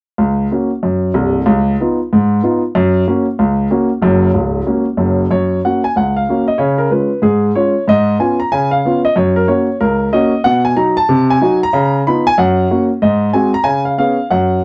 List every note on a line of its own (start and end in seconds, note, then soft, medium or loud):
0.18 0.46 C#2 medium
0.51 0.69 A#3 soft
0.51 0.69 C#4 soft
0.51 0.70 F#4 soft
0.83 1.10 F#2 medium
1.14 1.40 C1 medium
1.14 1.40 C2 medium
1.46 1.74 C#2 medium
1.80 1.97 B3 soft
1.80 1.98 D#4 soft
1.80 1.98 F4 soft
2.13 2.39 G#2 medium
2.43 2.60 B3 soft
2.43 2.61 D#4 soft
2.43 2.61 F4 medium
2.75 3.02 F#2 medium
3.07 3.25 A#3 soft
3.07 3.25 C#4 soft
3.07 3.25 F#4 soft
3.39 3.66 C#2 medium
3.70 3.88 A#3 soft
3.70 3.88 C#4 soft
3.70 3.89 F#4 medium
4.02 4.28 F#1 medium
4.02 4.28 F#2 medium
4.34 4.60 C#1 medium
4.34 4.60 C#2 medium
4.67 4.85 A#3 soft
4.67 4.85 C#4 soft
4.67 4.84 F#4 soft
4.97 5.23 F#1 medium
4.97 5.24 F#2 medium
5.31 5.58 F#2 medium
5.31 5.58 C#5 medium
5.65 5.82 A#3 soft
5.65 5.82 C#4 soft
5.65 5.83 F#4 soft
5.65 5.81 F#5 medium
5.84 5.94 G#5 medium
5.96 6.23 C#2 medium
5.96 6.13 F#5 medium
6.16 6.43 F5 medium
6.29 6.46 A#3 soft
6.29 6.47 C#4 soft
6.29 6.47 F#4 soft
6.48 6.58 D#5 medium
6.58 6.86 C#3 medium
6.58 6.76 C#5 medium
6.78 6.89 A#4 medium
6.90 7.08 G#3 soft
6.90 7.09 C#4 soft
6.90 7.09 F4 soft
6.90 7.18 B4 soft
7.22 7.50 G#2 medium
7.22 7.50 G#4 medium
7.55 7.73 G#3 soft
7.55 7.73 C#4 soft
7.55 7.73 F4 soft
7.55 7.83 C#5 medium
7.88 8.15 G#2 medium
7.88 8.16 D#5 medium
8.19 8.37 B3 soft
8.19 8.38 C#4 soft
8.19 8.38 F4 soft
8.19 8.37 G#5 medium
8.40 8.50 A#5 medium
8.52 8.79 C#3 medium
8.52 8.69 G#5 medium
8.71 8.99 F5 medium
8.85 9.03 B3 soft
8.85 9.03 C#4 soft
8.85 9.03 F4 soft
9.05 9.15 D#5 medium
9.16 9.43 F#2 medium
9.16 9.34 C#5 medium
9.36 9.46 A#4 medium
9.47 9.65 A#3 soft
9.47 9.66 C#4 soft
9.47 9.66 F#4 soft
9.47 9.75 C#5 medium
9.80 10.08 C#2 medium
9.80 10.08 A#4 medium
10.13 10.31 A#3 soft
10.13 10.31 C#4 medium
10.13 10.31 F#4 soft
10.13 10.40 D#5 medium
10.44 10.72 B2 medium
10.44 10.62 F#5 medium
10.65 10.75 G#5 medium
10.76 10.94 F#3 soft
10.76 10.94 D#4 soft
10.76 10.94 F#4 soft
10.76 10.94 A#5 medium
10.97 11.25 A5 loud
11.09 11.36 C3 medium
11.30 11.58 G#5 medium
11.41 11.59 F#3 soft
11.41 11.59 D#4 medium
11.41 11.60 F#4 medium
11.63 11.99 A#5 medium
11.73 12.00 C#3 medium
12.07 12.25 B3 soft
12.07 12.24 D#4 soft
12.07 12.25 F4 soft
12.07 12.23 B5 medium
12.27 12.36 G#5 loud
12.38 12.65 F#2 medium
12.38 12.83 F#5 medium
12.70 12.88 A#3 soft
12.70 12.88 C#4 soft
12.70 12.88 F#4 soft
13.02 13.29 G#2 medium
13.02 13.29 D#5 medium
13.33 13.51 G#3 soft
13.33 13.51 C4 soft
13.33 13.52 F#4 soft
13.33 13.51 G#5 medium
13.54 13.64 A#5 medium
13.64 13.92 C#3 medium
13.64 13.82 G#5 medium
13.85 13.96 F5 medium
13.98 14.16 B3 soft
13.98 14.16 C#4 soft
13.98 14.16 G#4 soft
13.98 14.25 F5 medium
14.30 14.58 F#2 medium
14.30 14.64 F#5 medium